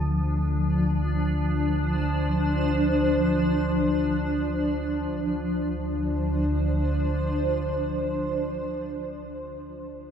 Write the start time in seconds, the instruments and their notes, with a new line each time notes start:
Already playing: synth drone D2 D3, ambient pad F3 D4
0.39 ambient pad C5
5.10 synth drone D2 D3, ambient pad F3
5.26 ambient pad D4
5.43 ambient pad C5